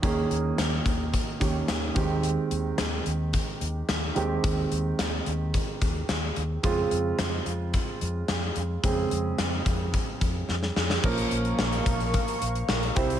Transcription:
<<
  \new Staff \with { instrumentName = "Analog synth pad" } { \time 4/4 \key bes \dorian \tempo 4 = 109 r1 | r1 | r1 | r1 |
r1 | <bes' f'' des'''>2.~ <bes' f'' des'''>8 <g' e'' c'''>8 | }
  \new Staff \with { instrumentName = "Grand piano" } { \time 4/4 \key bes \dorian <ees bes des' aes'>2~ <ees bes des' aes'>8 <ees bes des' g'>4 <ees aes c' g'>8~ | <ees aes c' g'>2.~ <ees aes c' g'>8 <ees aes c' g'>8~ | <ees aes c' g'>2.~ <ees aes c' g'>8 r8 | <des aes c' f'>1 |
<des aes c' aes'>1 | <f bes des' bes'>2.~ <f bes des' bes'>8 <g c' e' c''>8 | }
  \new Staff \with { instrumentName = "Fingered electric bass" } { \clef bass \time 4/4 \key bes \dorian ees,8 ees,8 ees,8 ees,8. r16 ees,8 ees,8 ees,8~ | ees,8 ees,8 ees,8 ees,8. r16 ees,8 ees,8 ees,8 | ees,8 ees,8 ees,8 ees,8. r16 ees,8 ees,8 ees,8 | f,8 f,8 f,8 f,8. r16 f,8 f,8 f,8 |
f,8 f,8 f,8 f,8. r16 f,8 f,8 f,8 | bes,,8 bes,,8 bes,,8 bes,,8. r16 bes,,8 bes,,8 c,8 | }
  \new DrumStaff \with { instrumentName = "Drums" } \drummode { \time 4/4 <hh bd>8 hh8 <hh sn>8 <hh bd>8 <hh bd>8 <hh bd>8 <hh sn>8 <hh bd>8 | hh8 hh8 <hh sn>8 hh8 <hh bd>8 hh8 <hh sn>8 hh8 | <hh bd>8 hh8 <hh sn>8 hh8 <hh bd>8 <hh bd>8 <hh sn>8 hh8 | <hh bd>8 hh8 <hh sn>8 hh8 <hh bd>8 hh8 <hh sn>8 hh8 |
<hh bd>8 hh8 <hh sn>8 <hh bd>8 <hh bd>8 <hh bd>8 sn16 sn16 sn16 sn16 | <cymc bd>16 hh16 hh16 hh16 sn16 hh16 <hh bd>16 hh16 <hh bd>16 hh16 hh16 hh16 sn16 hh16 <hh bd>16 hh16 | }
>>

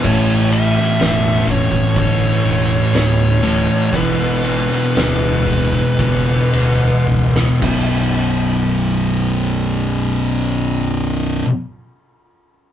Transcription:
<<
  \new Staff \with { instrumentName = "Lead electric guitar" } { \time 4/4 \key b \minor \tempo 4 = 57 cis''8 e''4 cis''8 cis''2 | b'2. r4 | r1 | }
  \new Staff \with { instrumentName = "Distorted electric guitar" } { \clef bass \time 4/4 \key b \minor <a, e a>2.~ <a, e a>8 <a, e a>8 | <e, b, e>2.~ <e, b, e>8 <b,, fis, b,>8~ | <b,, fis, b,>1 | }
  \new Staff \with { instrumentName = "Distorted electric guitar" } { \clef bass \time 4/4 \key b \minor <a, e a>2.~ <a, e a>8 <a, e a>8 | <e, b, e>2.~ <e, b, e>8 <b,, fis, b,>8~ | <b,, fis, b,>1 | }
  \new Staff \with { instrumentName = "Fingered electric bass" } { \clef bass \time 4/4 \key b \minor a,,4 e,,4 g,,8 e,,8 d,,4 | gis,,4 d,,4 fis,,8 d,,8 cis,,8 b,,,8~ | b,,,1 | }
  \new DrumStaff \with { instrumentName = "Drums" } \drummode { \time 4/4 <cymc bd>8 cymr16 sn16 <cymr sn>8 <bd cymr>16 bd16 <bd cymr>8 cymr8 <cymr sn>8 cymr8 | <bd cymr>8 cymr16 sn16 <cymr sn>8 <bd cymr>16 bd16 <bd cymr>8 cymr8 bd16 sn16 <cymc bd>8 | r4 r4 r4 r4 | }
>>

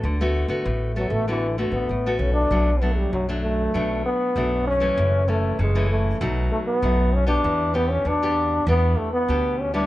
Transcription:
<<
  \new Staff \with { instrumentName = "Trombone" } { \time 4/4 \key d \major \tempo 4 = 97 r4. fis16 a16 e8 a16 b8. cis'16 d'16~ | \key b \minor d'8 b16 g16 fis8 a4 b4 cis'8~ | cis'8 a8 gis8 a8 r8 a16 b8. cis'16 d'16~ | d'8 b16 cis'16 d'4 b8 a16 b8. cis'16 d'16 | }
  \new Staff \with { instrumentName = "Nylon-string guitar" } { \time 4/4 \key d \major << { <a b fis'>16 <a b fis'>8 <a b fis'>8. <a b fis'>8 <a b fis'>16 r16 <a b fis'>8 r16 <a b fis'>8. | \key b \minor <fis a d'>16 r16 <fis a d'>8. <fis a d'>8. <fis a d'>4 <fis a d'>8. <e a cis'>16~ | <e a cis'>8 <e a cis'>8. <e a cis'>8. <fis a dis'>4 <fis a dis'>8. <b d' g'>16~ | <b d' g'>8 <b d' g'>8 r16 <b d' g'>8. <b d' g'>8. r16 <b d' g'>8. <g b e'>16 | } \\ { d4 a,4 d4 a,4 | b,4 fis,4 b,4 fis,4 | fis,4 cis4 b,4 fis,4 | e4 b,4 e4 b,4 | } >> }
  \new Staff \with { instrumentName = "Upright bass" } { \clef bass \time 4/4 \key d \major d,8. d16 a,,8. a,,4 a,,16 a,,8 b,,8 | \key b \minor b,,4 b,,4 b,,8 r8 b,,4 | fis,,4 fis,,4 b,,8 r8 b,,4 | e,4 e,4 e,8 r8 d,4 | }
>>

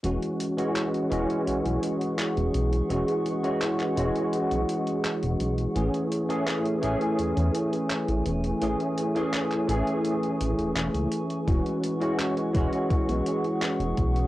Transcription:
<<
  \new Staff \with { instrumentName = "Ambient pad" } { \time 4/4 \key e \major \tempo 4 = 84 << { cis'''1~ | cis'''1 | cis'''1~ | cis'''1~ |
cis'''1 | } \\ { <gis' fis''>1~ | <gis' fis''>1 | <a gis''>1~ | <a gis''>1 |
<gis' fis''>1 | } >> }
  \new Staff \with { instrumentName = "Tine electric piano" } { \time 4/4 \key e \major <e gis cis' fis'>8. <e gis cis' fis'>8. <e gis cis' fis'>2~ <e gis cis' fis'>8 | <e gis cis' fis'>8. <e gis cis' fis'>8. <e gis cis' fis'>2~ <e gis cis' fis'>8 | <e a cis' gis'>8. <e a cis' gis'>8. <e a cis' gis'>2~ <e a cis' gis'>8 | <e a cis' gis'>8. <e a cis' gis'>8. <e a cis' gis'>2~ <e a cis' gis'>8 |
<e gis cis' fis'>8. <e gis cis' fis'>8. <e gis cis' fis'>2~ <e gis cis' fis'>8 | }
  \new Staff \with { instrumentName = "Analog synth bass" } { \clef bass \time 4/4 \key e \major e,,16 r4 r16 e,,16 r16 b,,16 b,,16 r8. e,,16 b,,8 | e,,16 r4 r16 e,,16 r8 b,,16 r8. e,,16 b,,8 | a,,16 r4 r16 a,,16 r16 e,16 e,16 r8. a,,16 e,,8 | a,,16 r4 r16 a,,16 r8. a,,16 e,,16 e,,16 cis,16 r8 |
e,,16 r4 r16 e,,16 r16 b,,16 b,,16 r8. e,,16 b,,8 | }
  \new DrumStaff \with { instrumentName = "Drums" } \drummode { \time 4/4 hh16 hh16 hh16 hh16 <hc hh>16 hh16 hh16 hh16 hh16 hh16 hh16 hh16 <hc hh>16 hh16 hh16 hh16 | hh16 hh16 hh16 hh16 <hc hh>16 <hc hh>16 hh16 hh16 hh16 hh16 hh16 hh16 <hc hh>16 hh16 hh16 hh16 | hh16 hh16 hh16 hh16 <hc hh>16 hh16 hh16 hh16 hh16 hh16 hh16 hh16 <hc hh>16 hh16 hh16 hh16 | hh16 hh16 hh16 hh16 <hc hh>16 <hc hh>16 hh16 hh16 hh16 hh16 hh16 hh16 <hc hh>16 hh16 hh16 hh16 |
<hh bd>16 hh16 hh16 hh16 <hc hh>16 hh16 <hh bd>16 hh16 <hh bd>16 hh16 hh16 hh16 <hc hh>16 hh16 <hh bd>16 hh16 | }
>>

